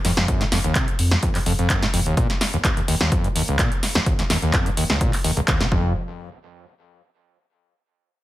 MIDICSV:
0, 0, Header, 1, 4, 480
1, 0, Start_track
1, 0, Tempo, 472441
1, 289, Time_signature, 4, 2, 24, 8
1, 8370, End_track
2, 0, Start_track
2, 0, Title_t, "Acid bass"
2, 0, Program_c, 0, 38
2, 49, Note_on_c, 0, 41, 103
2, 118, Note_off_c, 0, 41, 0
2, 175, Note_on_c, 0, 41, 102
2, 269, Note_off_c, 0, 41, 0
2, 288, Note_on_c, 0, 42, 82
2, 414, Note_on_c, 0, 46, 106
2, 430, Note_off_c, 0, 42, 0
2, 452, Note_off_c, 0, 46, 0
2, 529, Note_on_c, 0, 41, 80
2, 598, Note_off_c, 0, 41, 0
2, 655, Note_on_c, 0, 39, 77
2, 749, Note_off_c, 0, 39, 0
2, 769, Note_on_c, 0, 48, 87
2, 873, Note_off_c, 0, 48, 0
2, 1135, Note_on_c, 0, 41, 85
2, 1172, Note_off_c, 0, 41, 0
2, 1247, Note_on_c, 0, 41, 84
2, 1317, Note_off_c, 0, 41, 0
2, 1374, Note_on_c, 0, 41, 78
2, 1412, Note_off_c, 0, 41, 0
2, 1487, Note_on_c, 0, 41, 102
2, 1557, Note_off_c, 0, 41, 0
2, 1613, Note_on_c, 0, 41, 101
2, 1708, Note_off_c, 0, 41, 0
2, 1852, Note_on_c, 0, 46, 110
2, 1891, Note_off_c, 0, 46, 0
2, 1967, Note_on_c, 0, 41, 73
2, 2037, Note_off_c, 0, 41, 0
2, 2093, Note_on_c, 0, 39, 80
2, 2187, Note_off_c, 0, 39, 0
2, 2574, Note_on_c, 0, 39, 76
2, 2612, Note_off_c, 0, 39, 0
2, 2688, Note_on_c, 0, 39, 87
2, 2758, Note_off_c, 0, 39, 0
2, 2814, Note_on_c, 0, 39, 76
2, 2852, Note_off_c, 0, 39, 0
2, 2928, Note_on_c, 0, 39, 105
2, 2998, Note_off_c, 0, 39, 0
2, 3055, Note_on_c, 0, 39, 108
2, 3148, Note_off_c, 0, 39, 0
2, 3168, Note_on_c, 0, 41, 81
2, 3294, Note_on_c, 0, 44, 106
2, 3310, Note_off_c, 0, 41, 0
2, 3332, Note_off_c, 0, 44, 0
2, 3409, Note_on_c, 0, 39, 72
2, 3478, Note_off_c, 0, 39, 0
2, 3536, Note_on_c, 0, 37, 76
2, 3629, Note_off_c, 0, 37, 0
2, 3650, Note_on_c, 0, 46, 90
2, 3753, Note_off_c, 0, 46, 0
2, 4016, Note_on_c, 0, 39, 79
2, 4053, Note_off_c, 0, 39, 0
2, 4129, Note_on_c, 0, 39, 85
2, 4198, Note_off_c, 0, 39, 0
2, 4256, Note_on_c, 0, 39, 76
2, 4292, Note_off_c, 0, 39, 0
2, 4369, Note_on_c, 0, 39, 105
2, 4438, Note_off_c, 0, 39, 0
2, 4495, Note_on_c, 0, 39, 101
2, 4588, Note_off_c, 0, 39, 0
2, 4609, Note_on_c, 0, 41, 88
2, 4735, Note_on_c, 0, 44, 97
2, 4750, Note_off_c, 0, 41, 0
2, 4772, Note_off_c, 0, 44, 0
2, 4849, Note_on_c, 0, 39, 77
2, 4918, Note_off_c, 0, 39, 0
2, 4975, Note_on_c, 0, 37, 80
2, 5069, Note_off_c, 0, 37, 0
2, 5089, Note_on_c, 0, 46, 83
2, 5193, Note_off_c, 0, 46, 0
2, 5328, Note_on_c, 0, 39, 77
2, 5398, Note_off_c, 0, 39, 0
2, 5454, Note_on_c, 0, 37, 105
2, 5492, Note_off_c, 0, 37, 0
2, 5569, Note_on_c, 0, 39, 110
2, 5695, Note_on_c, 0, 49, 79
2, 5711, Note_off_c, 0, 39, 0
2, 5757, Note_off_c, 0, 49, 0
2, 5809, Note_on_c, 0, 41, 94
2, 6032, Note_off_c, 0, 41, 0
2, 8370, End_track
3, 0, Start_track
3, 0, Title_t, "Analog synth bass"
3, 0, Program_c, 1, 38
3, 47, Note_on_c, 1, 29, 100
3, 239, Note_off_c, 1, 29, 0
3, 526, Note_on_c, 1, 29, 94
3, 719, Note_off_c, 1, 29, 0
3, 1007, Note_on_c, 1, 41, 88
3, 1199, Note_off_c, 1, 41, 0
3, 1488, Note_on_c, 1, 29, 84
3, 1679, Note_off_c, 1, 29, 0
3, 1967, Note_on_c, 1, 29, 108
3, 2159, Note_off_c, 1, 29, 0
3, 5809, Note_on_c, 1, 29, 99
3, 6032, Note_off_c, 1, 29, 0
3, 8370, End_track
4, 0, Start_track
4, 0, Title_t, "Drums"
4, 48, Note_on_c, 9, 38, 38
4, 48, Note_on_c, 9, 46, 116
4, 149, Note_off_c, 9, 38, 0
4, 149, Note_off_c, 9, 46, 0
4, 174, Note_on_c, 9, 38, 83
4, 276, Note_off_c, 9, 38, 0
4, 287, Note_on_c, 9, 36, 125
4, 287, Note_on_c, 9, 42, 65
4, 389, Note_off_c, 9, 36, 0
4, 389, Note_off_c, 9, 42, 0
4, 414, Note_on_c, 9, 38, 36
4, 414, Note_on_c, 9, 42, 41
4, 516, Note_off_c, 9, 38, 0
4, 516, Note_off_c, 9, 42, 0
4, 528, Note_on_c, 9, 38, 61
4, 528, Note_on_c, 9, 46, 114
4, 630, Note_off_c, 9, 38, 0
4, 630, Note_off_c, 9, 46, 0
4, 654, Note_on_c, 9, 42, 39
4, 755, Note_off_c, 9, 42, 0
4, 764, Note_on_c, 9, 39, 122
4, 767, Note_on_c, 9, 36, 125
4, 767, Note_on_c, 9, 42, 68
4, 866, Note_off_c, 9, 39, 0
4, 868, Note_off_c, 9, 42, 0
4, 869, Note_off_c, 9, 36, 0
4, 893, Note_on_c, 9, 42, 39
4, 995, Note_off_c, 9, 42, 0
4, 1005, Note_on_c, 9, 46, 110
4, 1107, Note_off_c, 9, 46, 0
4, 1132, Note_on_c, 9, 38, 73
4, 1234, Note_off_c, 9, 38, 0
4, 1246, Note_on_c, 9, 42, 66
4, 1247, Note_on_c, 9, 36, 121
4, 1348, Note_off_c, 9, 42, 0
4, 1349, Note_off_c, 9, 36, 0
4, 1370, Note_on_c, 9, 39, 38
4, 1373, Note_on_c, 9, 46, 62
4, 1472, Note_off_c, 9, 39, 0
4, 1474, Note_off_c, 9, 46, 0
4, 1487, Note_on_c, 9, 46, 110
4, 1588, Note_off_c, 9, 46, 0
4, 1614, Note_on_c, 9, 42, 42
4, 1715, Note_off_c, 9, 42, 0
4, 1725, Note_on_c, 9, 39, 127
4, 1727, Note_on_c, 9, 36, 127
4, 1727, Note_on_c, 9, 42, 70
4, 1827, Note_off_c, 9, 39, 0
4, 1829, Note_off_c, 9, 36, 0
4, 1829, Note_off_c, 9, 42, 0
4, 1854, Note_on_c, 9, 38, 63
4, 1854, Note_on_c, 9, 42, 40
4, 1956, Note_off_c, 9, 38, 0
4, 1956, Note_off_c, 9, 42, 0
4, 1968, Note_on_c, 9, 46, 117
4, 2069, Note_off_c, 9, 46, 0
4, 2094, Note_on_c, 9, 42, 42
4, 2196, Note_off_c, 9, 42, 0
4, 2207, Note_on_c, 9, 36, 127
4, 2209, Note_on_c, 9, 42, 59
4, 2309, Note_off_c, 9, 36, 0
4, 2311, Note_off_c, 9, 42, 0
4, 2335, Note_on_c, 9, 38, 36
4, 2335, Note_on_c, 9, 42, 40
4, 2437, Note_off_c, 9, 38, 0
4, 2437, Note_off_c, 9, 42, 0
4, 2449, Note_on_c, 9, 38, 59
4, 2449, Note_on_c, 9, 46, 114
4, 2550, Note_off_c, 9, 38, 0
4, 2550, Note_off_c, 9, 46, 0
4, 2576, Note_on_c, 9, 42, 39
4, 2677, Note_off_c, 9, 42, 0
4, 2687, Note_on_c, 9, 36, 120
4, 2688, Note_on_c, 9, 39, 122
4, 2690, Note_on_c, 9, 42, 65
4, 2789, Note_off_c, 9, 36, 0
4, 2789, Note_off_c, 9, 39, 0
4, 2792, Note_off_c, 9, 42, 0
4, 2815, Note_on_c, 9, 42, 38
4, 2917, Note_off_c, 9, 42, 0
4, 2928, Note_on_c, 9, 46, 116
4, 3030, Note_off_c, 9, 46, 0
4, 3054, Note_on_c, 9, 38, 70
4, 3054, Note_on_c, 9, 42, 36
4, 3156, Note_off_c, 9, 38, 0
4, 3156, Note_off_c, 9, 42, 0
4, 3168, Note_on_c, 9, 36, 125
4, 3169, Note_on_c, 9, 42, 65
4, 3269, Note_off_c, 9, 36, 0
4, 3271, Note_off_c, 9, 42, 0
4, 3295, Note_on_c, 9, 42, 37
4, 3397, Note_off_c, 9, 42, 0
4, 3410, Note_on_c, 9, 46, 115
4, 3511, Note_off_c, 9, 46, 0
4, 3536, Note_on_c, 9, 42, 40
4, 3638, Note_off_c, 9, 42, 0
4, 3647, Note_on_c, 9, 39, 126
4, 3648, Note_on_c, 9, 36, 127
4, 3649, Note_on_c, 9, 42, 65
4, 3749, Note_off_c, 9, 39, 0
4, 3750, Note_off_c, 9, 36, 0
4, 3751, Note_off_c, 9, 42, 0
4, 3777, Note_on_c, 9, 42, 38
4, 3878, Note_off_c, 9, 42, 0
4, 3890, Note_on_c, 9, 38, 36
4, 3890, Note_on_c, 9, 46, 117
4, 3992, Note_off_c, 9, 38, 0
4, 3992, Note_off_c, 9, 46, 0
4, 4016, Note_on_c, 9, 38, 83
4, 4118, Note_off_c, 9, 38, 0
4, 4128, Note_on_c, 9, 36, 123
4, 4130, Note_on_c, 9, 42, 62
4, 4230, Note_off_c, 9, 36, 0
4, 4231, Note_off_c, 9, 42, 0
4, 4256, Note_on_c, 9, 38, 36
4, 4256, Note_on_c, 9, 42, 40
4, 4357, Note_off_c, 9, 38, 0
4, 4357, Note_off_c, 9, 42, 0
4, 4369, Note_on_c, 9, 38, 59
4, 4369, Note_on_c, 9, 46, 115
4, 4471, Note_off_c, 9, 38, 0
4, 4471, Note_off_c, 9, 46, 0
4, 4495, Note_on_c, 9, 42, 38
4, 4597, Note_off_c, 9, 42, 0
4, 4606, Note_on_c, 9, 39, 113
4, 4608, Note_on_c, 9, 36, 122
4, 4608, Note_on_c, 9, 42, 61
4, 4708, Note_off_c, 9, 39, 0
4, 4710, Note_off_c, 9, 36, 0
4, 4710, Note_off_c, 9, 42, 0
4, 4736, Note_on_c, 9, 42, 37
4, 4837, Note_off_c, 9, 42, 0
4, 4849, Note_on_c, 9, 46, 111
4, 4951, Note_off_c, 9, 46, 0
4, 4976, Note_on_c, 9, 38, 78
4, 4976, Note_on_c, 9, 42, 35
4, 5077, Note_off_c, 9, 38, 0
4, 5077, Note_off_c, 9, 42, 0
4, 5089, Note_on_c, 9, 36, 121
4, 5089, Note_on_c, 9, 42, 65
4, 5190, Note_off_c, 9, 36, 0
4, 5191, Note_off_c, 9, 42, 0
4, 5213, Note_on_c, 9, 39, 35
4, 5216, Note_on_c, 9, 46, 64
4, 5315, Note_off_c, 9, 39, 0
4, 5317, Note_off_c, 9, 46, 0
4, 5328, Note_on_c, 9, 46, 109
4, 5430, Note_off_c, 9, 46, 0
4, 5455, Note_on_c, 9, 42, 41
4, 5557, Note_off_c, 9, 42, 0
4, 5567, Note_on_c, 9, 39, 124
4, 5569, Note_on_c, 9, 36, 124
4, 5569, Note_on_c, 9, 42, 61
4, 5669, Note_off_c, 9, 39, 0
4, 5670, Note_off_c, 9, 36, 0
4, 5671, Note_off_c, 9, 42, 0
4, 5695, Note_on_c, 9, 38, 58
4, 5695, Note_on_c, 9, 42, 37
4, 5797, Note_off_c, 9, 38, 0
4, 5797, Note_off_c, 9, 42, 0
4, 5809, Note_on_c, 9, 36, 114
4, 5910, Note_off_c, 9, 36, 0
4, 8370, End_track
0, 0, End_of_file